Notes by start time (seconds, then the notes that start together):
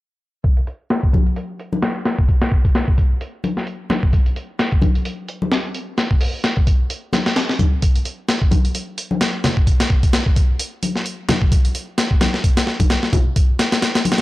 0.44 kick, closed hi-hat
0.57 closed hi-hat
0.67 closed hi-hat
0.90 snare, closed hi-hat
1.03 kick
1.13 kick, closed hi-hat, high conga
1.26 closed hi-hat
1.36 closed hi-hat
1.59 closed hi-hat
1.73 high conga
1.82 snare, closed hi-hat
2.05 snare, closed hi-hat
2.19 kick
2.29 kick, closed hi-hat
2.42 snare, closed hi-hat
2.52 kick
2.65 kick, closed hi-hat
2.75 snare, closed hi-hat
2.88 kick
2.98 kick, closed hi-hat
3.21 closed hi-hat
3.44 closed hi-hat, high conga
3.57 snare
3.67 closed hi-hat
3.90 snare, closed hi-hat, high conga
4.03 kick
4.13 kick, closed hi-hat
4.26 closed hi-hat
4.36 closed hi-hat
4.59 snare, closed hi-hat
4.72 kick
4.82 kick, closed hi-hat, high conga
4.95 closed hi-hat
5.05 closed hi-hat
5.28 closed hi-hat
5.42 high conga
5.52 snare, closed hi-hat
5.74 closed hi-hat
5.98 snare, closed hi-hat
6.11 kick
6.21 open hi-hat
6.44 snare, closed hi-hat
6.57 kick
6.67 kick, closed hi-hat
6.90 closed hi-hat
7.13 snare, closed hi-hat, high conga
7.26 snare, closed hi-hat
7.36 snare, closed hi-hat
7.49 snare
7.59 kick, closed hi-hat, high conga
7.82 kick, closed hi-hat
7.96 closed hi-hat
8.05 closed hi-hat
8.29 snare, closed hi-hat
8.42 kick
8.51 kick, closed hi-hat, high conga
8.65 closed hi-hat
8.75 closed hi-hat
8.98 closed hi-hat
9.11 high conga
9.21 snare, closed hi-hat
9.44 snare, closed hi-hat, low conga
9.57 kick
9.67 kick, closed hi-hat
9.80 snare, closed hi-hat
9.90 kick
10.03 kick, closed hi-hat
10.13 snare, closed hi-hat
10.26 kick
10.36 kick, closed hi-hat
10.59 closed hi-hat
10.83 closed hi-hat, high conga
10.96 snare
11.06 closed hi-hat
11.29 snare, closed hi-hat, high conga, low conga
11.42 kick
11.52 kick, closed hi-hat
11.65 closed hi-hat
11.75 closed hi-hat
11.98 snare, closed hi-hat
12.11 kick
12.21 snare, closed hi-hat, high conga
12.34 snare
12.44 kick, closed hi-hat
12.57 snare, closed hi-hat
12.67 snare
12.80 kick, closed hi-hat, high conga
12.90 snare, closed hi-hat
13.03 snare
13.13 kick, closed hi-hat, low conga
13.36 kick, closed hi-hat
13.59 snare, closed hi-hat
13.72 snare, closed hi-hat
13.82 snare, closed hi-hat
13.95 snare, closed hi-hat
14.05 closed hi-hat, high conga
14.12 snare, closed hi-hat
14.18 snare, closed hi-hat